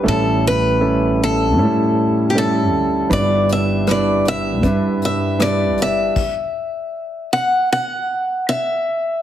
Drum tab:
CC |--------|--------|x-------|
HH |--------|xxxxxxxx|--------|
SD |--------|--r---r-|--------|
BD |--------|o---o---|o-------|